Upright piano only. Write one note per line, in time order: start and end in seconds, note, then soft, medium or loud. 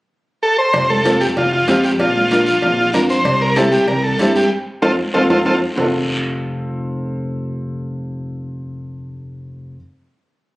1.05 1.27 C4 medium
1.05 1.27 F4 medium
1.05 1.27 A4 medium
1.68 1.90 C4 medium
1.68 1.90 F4 medium
1.68 1.90 G4 medium
2.31 2.53 D4 medium
2.31 2.53 F4 medium
2.31 2.54 A#4 medium
2.94 3.16 D4 medium
2.94 3.16 F4 medium
2.94 3.16 A#4 medium
3.56 3.79 C4 medium
3.56 3.79 E4 medium
3.56 3.79 G4 medium
4.20 4.42 C4 medium
4.20 4.42 E4 medium
4.20 4.42 G4 medium
4.83 4.93 C4 medium
4.83 4.93 F4 loud
4.83 4.93 A4 medium
5.15 5.24 C4 medium
5.15 5.24 F4 medium
5.15 5.24 A4 loud
5.30 5.40 C4 medium
5.30 5.40 F4 medium
5.30 5.40 A4 medium
5.46 5.56 C4 medium
5.46 5.56 F4 medium
5.46 5.56 A4 medium
5.76 9.75 C4 medium
5.76 9.76 F4 medium
5.80 9.77 A4 medium